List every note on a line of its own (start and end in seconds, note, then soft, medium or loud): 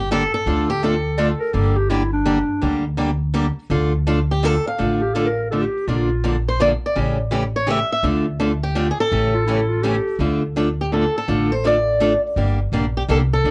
0.00 0.24 G1 medium
0.00 0.12 G4 medium
0.11 0.22 D3 medium
0.11 0.22 G3 medium
0.11 0.22 A#3 medium
0.11 0.22 D4 medium
0.11 0.23 G4 medium
0.11 0.33 A4 medium
0.34 0.67 A4 medium
0.46 1.33 D2 medium
0.46 0.68 D3 medium
0.46 0.68 A3 medium
0.46 0.68 D4 medium
0.46 0.68 F4 medium
0.46 0.68 A4 medium
0.70 0.83 G4 medium
0.82 0.94 D3 medium
0.82 0.94 A3 medium
0.82 0.94 D4 medium
0.82 0.94 F4 medium
0.82 0.94 A4 medium
0.82 1.38 A4 medium
1.18 1.29 D3 medium
1.18 1.30 A3 medium
1.18 1.30 D4 medium
1.18 1.30 F4 medium
1.18 1.30 A4 medium
1.18 1.28 D5 medium
1.39 1.55 A#4 medium
1.53 2.41 G1 medium
1.53 1.75 D3 soft
1.53 1.75 G3 medium
1.53 1.75 A#3 medium
1.53 1.76 D4 medium
1.53 1.76 G4 medium
1.53 1.78 A4 medium
1.76 1.91 G4 medium
1.90 2.01 D3 medium
1.90 2.01 G3 medium
1.90 2.02 A#3 medium
1.90 2.02 D4 medium
1.90 2.12 E4 medium
1.90 2.02 G4 medium
2.13 2.81 D4 medium
2.25 2.37 D3 medium
2.25 2.37 G3 medium
2.25 2.37 A#3 medium
2.25 2.38 D4 medium
2.25 2.38 G4 medium
2.62 3.49 D2 medium
2.62 2.83 D3 medium
2.62 2.83 G3 medium
2.62 2.84 A#3 medium
2.62 2.84 D4 medium
2.62 2.84 G4 medium
2.97 3.09 D3 medium
2.97 3.09 G3 medium
2.97 3.09 A#3 medium
2.97 3.10 D4 medium
2.97 3.10 G4 medium
3.34 3.45 D3 medium
3.34 3.46 G3 medium
3.34 3.46 A#3 medium
3.34 3.46 D4 medium
3.34 3.46 G4 medium
3.70 4.57 D2 medium
3.70 3.92 D3 medium
3.70 3.92 A3 medium
3.70 3.92 D4 medium
3.70 3.92 F4 medium
3.70 3.92 A4 medium
4.07 4.18 D3 medium
4.07 4.18 A3 medium
4.07 4.18 D4 medium
4.07 4.18 F4 medium
4.07 4.18 A4 medium
4.31 4.45 G4 medium
4.43 4.54 D3 medium
4.43 4.54 A3 medium
4.43 4.54 D4 medium
4.43 4.55 F4 medium
4.43 4.55 A4 medium
4.43 4.66 A4 medium
4.67 5.48 F5 medium
4.78 5.66 A1 medium
4.78 5.00 D3 medium
4.78 5.00 A3 medium
4.78 5.00 D4 medium
4.78 5.00 F4 medium
4.78 5.00 A4 medium
5.01 5.16 G4 medium
5.14 5.26 D3 medium
5.14 5.26 A3 medium
5.14 5.26 D4 medium
5.14 5.27 F4 medium
5.14 5.25 A4 medium
5.14 5.27 A4 medium
5.26 5.49 A#4 medium
5.51 5.63 D3 medium
5.51 5.63 A3 medium
5.51 5.63 D4 medium
5.51 5.63 F4 medium
5.51 5.63 A4 medium
5.62 5.89 G4 medium
5.87 6.74 A#1 medium
5.87 6.08 D3 medium
5.87 6.09 F3 medium
5.87 6.09 A#3 medium
5.87 6.09 D4 medium
5.87 6.34 F4 medium
5.87 6.09 A4 soft
6.24 6.35 D3 medium
6.24 6.35 F3 medium
6.24 6.35 A#3 medium
6.24 6.35 D4 medium
6.24 6.35 A4 medium
6.48 6.61 C5 medium
6.60 6.71 D3 medium
6.60 6.71 F3 medium
6.60 6.71 A#3 medium
6.60 6.71 D4 medium
6.60 6.71 A4 medium
6.60 6.67 D5 loud
6.86 6.96 D5 medium
6.96 7.82 A1 medium
6.96 7.17 C#3 medium
6.96 7.17 E3 medium
6.96 7.17 A3 soft
6.96 7.17 C#4 medium
6.96 7.17 G4 medium
7.31 7.42 C#3 medium
7.31 7.42 E3 medium
7.31 7.43 A3 medium
7.31 7.43 C#4 medium
7.31 7.43 G4 medium
7.56 7.69 C#5 medium
7.67 7.78 C#3 medium
7.67 7.78 E3 medium
7.67 7.79 A3 medium
7.67 7.79 C#4 medium
7.67 7.79 G4 medium
7.71 7.90 E5 medium
7.93 8.04 E5 medium
8.03 8.90 D2 medium
8.03 8.25 D3 medium
8.03 8.25 A3 medium
8.03 8.25 D4 medium
8.03 8.25 F4 medium
8.03 8.25 A4 medium
8.40 8.51 D3 medium
8.40 8.51 A3 medium
8.40 8.51 D4 medium
8.40 8.51 F4 medium
8.40 8.51 A4 medium
8.63 8.90 G4 medium
8.75 8.87 D3 medium
8.75 8.87 A3 medium
8.75 8.87 D4 medium
8.75 8.87 F4 medium
8.75 8.87 A4 medium
8.91 8.99 G#4 medium
9.00 10.03 A4 loud
9.11 9.98 A1 medium
9.11 9.32 C#3 soft
9.11 9.33 E3 medium
9.11 9.33 A3 medium
9.11 9.33 C#4 medium
9.11 9.33 G4 medium
9.34 9.46 F4 medium
9.46 9.59 C#3 medium
9.46 9.59 E3 medium
9.46 9.59 A3 medium
9.46 9.59 C#4 medium
9.46 9.71 E4 medium
9.46 9.60 G4 medium
9.69 9.84 F4 medium
9.82 9.95 C#3 medium
9.82 9.95 E3 medium
9.82 9.95 A3 medium
9.82 9.95 C#4 medium
9.82 10.19 G4 medium
9.82 9.95 G4 medium
10.19 11.06 D2 medium
10.19 10.41 D3 medium
10.19 10.41 A3 medium
10.19 10.41 D4 medium
10.19 10.41 F4 medium
10.19 10.42 A4 medium
10.56 10.67 D3 medium
10.56 10.67 A3 medium
10.56 10.67 D4 medium
10.56 10.68 F4 medium
10.56 10.68 A4 medium
10.81 10.92 G4 medium
10.92 11.03 D3 medium
10.92 11.03 A3 medium
10.92 11.04 D4 medium
10.92 11.04 F4 medium
10.92 11.04 A4 medium
10.92 11.16 A4 medium
11.17 11.53 A4 medium
11.28 12.15 A1 medium
11.28 11.49 D3 medium
11.28 11.49 A3 medium
11.28 11.49 D4 medium
11.28 11.50 F4 medium
11.28 11.50 A4 medium
11.52 11.65 C5 medium
11.64 11.75 D3 medium
11.64 11.75 A3 medium
11.64 11.76 D4 medium
11.64 11.76 F4 medium
11.64 11.76 A4 medium
11.64 12.20 D5 medium
12.00 12.12 D3 medium
12.00 12.12 A3 medium
12.00 12.12 D4 medium
12.00 12.12 F4 medium
12.00 12.12 A4 medium
12.36 12.65 G1 medium
12.36 12.58 D3 medium
12.36 12.58 G3 medium
12.36 12.58 A#3 medium
12.36 12.58 D4 medium
12.36 12.58 G4 medium
12.72 13.03 A#1 medium
12.72 12.84 D3 medium
12.72 12.84 G3 medium
12.72 12.84 A#3 medium
12.72 12.84 D4 medium
12.72 12.84 G4 medium
12.97 13.02 G4 medium
13.08 13.39 C2 medium
13.08 13.20 D3 medium
13.08 13.20 G3 medium
13.08 13.20 A#3 medium
13.08 13.20 D4 medium
13.08 13.21 G4 medium
13.08 13.17 A4 loud
13.33 13.51 A4 medium
13.44 13.51 D2 medium
13.44 13.51 D3 medium
13.44 13.51 A3 soft
13.44 13.51 D4 medium
13.44 13.51 F4 medium
13.44 13.51 A4 medium